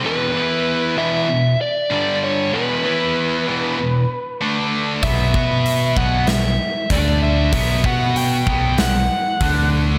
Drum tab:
HH |--------|--------|o-o-o-o-|o-o-o-o-|
SD |--------|--------|----o---|----o---|
BD |--------|--------|oo-o--o-|oo-o--o-|